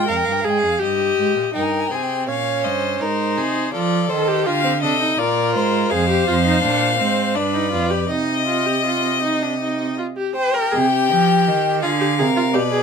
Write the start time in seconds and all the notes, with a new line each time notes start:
Already playing: G#2 G5
0.08 F2 A#4 F5
0.16 G5
0.25 G2 F5
0.32 G5
0.41 G#4 F5
0.46 G#2 G5
0.58 F5
0.64 F2
0.80 G2 G4 D#5
1.18 G#2
1.36 A#2
1.54 G2 D#4 A#4 G5
1.63 G#5
1.71 G5
1.80 G#5
1.87 G5
1.91 C3 C4 G#4
1.95 G#5
2.03 G5
2.28 A#2 C#4 C#5 F5
2.64 G2 C5 D#5
3.01 G#2 D#4 A#4 C5
3.37 C3 G#4
3.73 F3 F4 A4 D5
4.10 D#3 A4 C5
4.28 G4
4.46 D3 F4 G4 F5
4.64 C4
4.82 C3 D4 A4 D#5
5.01 D#4
5.18 A#2 F4 A#4 D5
5.55 G#2 C5
5.91 F2 G#4 C5 F5
6.09 G4
6.27 F2 F4
6.45 D#4
6.63 A#2 D4
6.99 G#2 C4
7.35 G2 D4 B4 D5
7.54 D#4
7.72 F2 F4
7.91 G4
8.09 C3 D#4 D#5
8.47 F4
8.66 G4
8.86 F4
9.23 D#4
9.42 D4
9.61 D#4
9.98 F4
10.17 G4
10.35 G4 C5 G5
10.54 A#4
10.72 C3 G#4
10.92 G4
11.10 F3
11.47 D#3
11.82 D3 F4 G#4 F5
12.00 G4
12.18 C3 G#4 A#4
12.36 F4
12.54 B2 G4 B4 D5
12.71 G#4